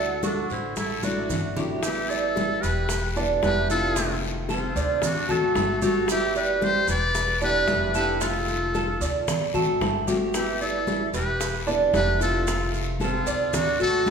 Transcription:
Already playing: D2 D3 F#3 A3 D4 E4 A4 F#5
0.23 D4 F#4 A4, high bongo, high conga, short guiro, maracas
0.49 A1 E4 C5, high bongo, high conga, short guiro, maracas
0.76 E4 A4, muted nylon-string guitar stroke, high bongo, high conga, long guiro, maracas
1.03 F#3 A3 D4 E4 F#4 D5, high bongo, high conga, maracas
1.29 G1 F#3 A3 D4 E4, high bongo, low bongo, low conga, short guiro, maracas
1.57 F#3 A3 D4 E4 G4, low conga, short guiro, maracas
1.83 G3 B3 E4 G4, high bongo, high conga, long guiro, maracas
2.08 E4 A4 D5, high bongo, high conga, maracas
2.36 high bongo, high conga, short guiro, maracas
2.61 E1 G4 B4, high conga, short guiro, maracas
2.89 muted nylon-string guitar stroke, high bongo, high conga, long guiro, maracas
3.16 D3 G3 B3 D4 E4, high bongo, high conga, maracas
3.42 F1 D3 G3 B3 E4 G4 B4, high bongo, low bongo, high conga, short guiro, maracas
3.69 D3 G3 B3 E4 F4 A4, high bongo, high conga, short guiro, maracas
3.96 C3 D#3 A3 C4 F4, high bongo, high conga, long guiro, maracas
4.23 high bongo, high conga, maracas
4.49 C4 F4 A4, high bongo, high conga, short guiro, maracas
4.75 D2 D5, high conga, short guiro, maracas
5.02 D4 F#4, muted nylon-string guitar stroke, high bongo, high conga, low conga, long guiro, maracas
5.28 A3 C4 F#4 A4, high bongo, high conga, low conga, maracas
5.55 G1 D3 A3 C4 F#4, high bongo, low bongo, high conga, short guiro, maracas
5.82 A3 C4 F#4 G4 A4, high conga, short guiro, maracas
6.08 G3 B3 E4 G4, high bongo, high conga, long guiro, maracas
6.35 G4 B4 D5, high bongo, high conga, maracas
6.61 G4 C5, high bongo, high conga, short guiro, maracas
6.88 E1 B4 D5, high conga, short guiro, maracas
7.15 muted nylon-string guitar stroke, high bongo, high conga, long guiro, maracas
7.41 D3 G3 B3 D4 E4 G4 B4, high bongo, high conga, maracas
7.67 F1 D3 G3 B3 E4, high bongo, low bongo, high conga, short guiro, maracas
7.95 D3 G3 B3 E4 G4 A4 B4, high bongo, high conga, short guiro, maracas
8.20 C3 D#3 A3 C4 F4 A4, high bongo, high conga, long guiro, maracas
8.48 high bongo, high conga, maracas
8.74 A4, high bongo, high conga, short guiro, maracas
9.01 D2 D5, high conga, short guiro, maracas
9.28 muted nylon-string guitar stroke, high bongo, high conga, low conga, long guiro, maracas
9.54 A1 A3 C4 F#4 A4, high bongo, high conga, low conga, maracas
9.81 G1 D3 A3 C4 F#4, high bongo, low bongo, high conga, short guiro, maracas
10.07 A3 C4 F#4 G4, high conga, short guiro, maracas
10.33 G3 B3 E4 G4, high bongo, high conga, long guiro, maracas
10.60 E4 A4 D5, high bongo, high conga, maracas
10.87 high bongo, high conga, short guiro, maracas
11.13 E1 G4 B4, high conga, short guiro, maracas
11.40 muted nylon-string guitar stroke, high bongo, high conga, long guiro, maracas
11.67 D3 G3 B3 D4 E4, high bongo, high conga, maracas
11.93 F1 D3 G3 B3 E4 G4 B4, high bongo, low bongo, high conga, short guiro, maracas
12.20 D3 G3 B3 E4 F4 A4, high bongo, high conga, short guiro, maracas
12.46 C3 D#3 A3 C4 F4, high bongo, high conga, long guiro, maracas
12.74 high bongo, high conga, maracas
13.00 C4 F4 A4, high bongo, high conga, short guiro, maracas
13.26 D2 D5, high conga, short guiro, maracas
13.53 D4 F#4, muted nylon-string guitar stroke, high bongo, high conga, low conga, long guiro, maracas
13.79 A1 A3 C4 F#4 A4, high bongo, high conga, maracas
14.06 G1 D3 A3, high conga, short guiro, maracas

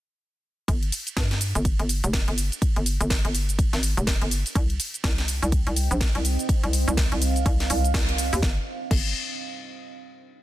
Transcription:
0.68 G1, kick, closed hi-hat, ride, shaker
0.83 closed hi-hat
0.92 open hi-hat, shaker
1.07 closed hi-hat, shaker
1.17 G2, kick, snare, closed hi-hat, ride, shaker
1.31 snare, closed hi-hat
1.41 open hi-hat, shaker
1.55 G1, closed hi-hat, shaker
1.65 kick, closed hi-hat, ride, shaker
1.79 G1, closed hi-hat
1.89 open hi-hat, shaker
2.04 F1, closed hi-hat, shaker
2.13 kick, snare, closed hi-hat, ride, shaker
2.28 G1, closed hi-hat
2.38 open hi-hat, shaker
2.52 closed hi-hat, shaker
2.62 kick, closed hi-hat, ride, shaker
2.76 G1, closed hi-hat
2.86 open hi-hat, shaker
3.01 G1, closed hi-hat, shaker
3.10 kick, snare, closed hi-hat, ride, shaker
3.25 G1, closed hi-hat
3.35 open hi-hat, shaker
3.49 closed hi-hat, shaker
3.59 kick, closed hi-hat, ride, shaker
3.73 G#1, snare, closed hi-hat
3.83 open hi-hat, shaker
3.97 F1, closed hi-hat, shaker
4.07 kick, snare, closed hi-hat, ride, shaker
4.22 G1, closed hi-hat
4.31 open hi-hat, shaker
4.46 open hi-hat, shaker
4.55 C2 C4 C5 D#5 G5, kick, closed hi-hat, ride, shaker
4.70 closed hi-hat
4.80 open hi-hat, shaker
4.94 closed hi-hat, shaker
5.04 C2, kick, snare, closed hi-hat, ride, shaker
5.18 snare, closed hi-hat
5.28 open hi-hat, shaker
5.43 C2, closed hi-hat, shaker
5.52 kick, closed hi-hat, ride, shaker
5.67 C2, closed hi-hat
5.76 open hi-hat, shaker
5.91 A#1, closed hi-hat, shaker
6.01 kick, snare, closed hi-hat, ride, shaker
6.15 C2, closed hi-hat
6.25 open hi-hat, shaker
6.39 closed hi-hat, shaker
6.49 F5, kick, closed hi-hat, ride, shaker
6.64 C2, closed hi-hat
6.73 open hi-hat, shaker
6.88 C2, closed hi-hat, shaker
6.97 kick, snare, closed hi-hat, ride, shaker
7.12 C2, closed hi-hat
7.22 open hi-hat, shaker
7.36 closed hi-hat, shaker
7.46 C2, kick, closed hi-hat, ride, shaker
7.60 snare, closed hi-hat
7.70 C2, open hi-hat, shaker
7.84 closed hi-hat, shaker
7.94 C2, kick, snare, closed hi-hat, ride, shaker
8.09 closed hi-hat
8.18 open hi-hat, shaker
8.33 D#2, open hi-hat, shaker
8.43 G1, kick, snare
8.91 G1, kick, crash

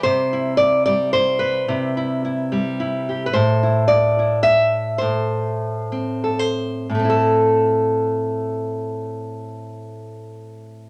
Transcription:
Already playing: G3 G4
0.03 C3 C5
0.33 E4
0.57 D5
0.86 G3 D5
1.13 C5
1.39 B4
1.68 C3 E4
1.97 E4
2.25 E4
2.52 G3
2.80 E4
3.09 G4
3.26 B4
3.33 A2 C5
3.63 E4
3.88 D5
4.19 E4
4.43 E5
4.98 A2 C5
5.92 C4
6.24 A4
6.39 C5
6.90 A2
6.95 A3
6.99 C4
7.05 E4
7.10 A4

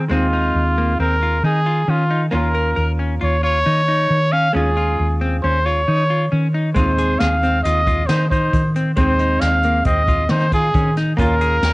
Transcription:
0.10 D#2 G#3 C4 D#4 F4
0.33 D#4
0.55 D#2
0.78 A#3
0.99 D#2 C4 A#4
1.23 F4
1.43 D#3 D#4 G#4
1.66 F4
1.88 D#3 C#4 F4
2.11 D#4
2.31 D#2 A#3 C#4 F4 A#4
2.55 A#4
2.76 D#2 A#4
2.99 C#4
3.21 D#2 F4 C#5
3.43 F4 C#5
3.66 D#3 D#4
3.88 D#4
4.10 D#3
4.32 C#4 F5
4.53 D#2 G#3 C#4 F4 G#4
4.77 F4
4.99 D#2
5.21 C4
5.43 D#2 C#4 C5
5.65 F4 C#5
5.88 D#3 D#4
6.10 F4
6.32 D#3 C#4
6.54 D#4
6.75 D#2 G#3 C4 F4 C5, kick, closed hi-hat
6.79 D#4
6.98 G#4, closed hi-hat
7.19 D#2 G#4 F5, snare, closed hi-hat
7.42 C4, closed hi-hat
7.63 D#2 F4 D#5, snare, closed hi-hat
7.87 F4, kick, closed hi-hat
8.07 D#3 D#4 C5, snare, closed hi-hat
8.31 D#4 C5, kick, closed hi-hat
8.53 D#3, kick, closed hi-hat
8.75 C4, closed hi-hat
8.96 D#2 G#3 C4 D#4 C5, kick, closed hi-hat
9.19 D#4, closed hi-hat
9.41 D#2 F5, snare, closed hi-hat
9.63 A#3, closed hi-hat
9.85 D#2 C4 D#5, kick, closed hi-hat
10.08 F4, kick, closed hi-hat
10.29 D#3 D#4 C5, snare, closed hi-hat
10.52 F4 G#4, kick, closed hi-hat
10.74 D#3 C#4, kick, closed hi-hat
10.96 D#4, snare, closed hi-hat
11.17 D#2 A#3 C#4 F4 A#4, kick, closed hi-hat
11.40 G#4, closed hi-hat
11.62 D#2 A#4, snare, closed hi-hat

